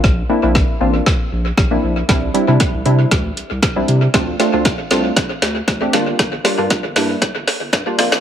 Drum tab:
HH |----------------|x-x-x-x-x-x-x-x-|x-x-x-x-x-x-x-x-|x-o-x-o-x-o-x-o-|
SD |o---o---o---o---|o---o---o---o---|o-o-o-o-o-o-o-o-|o-o-o-o-o-o-o-oo|
BD |o---o---o---o---|o---o---o---o---|o---o---o---o---|o---o---o---o---|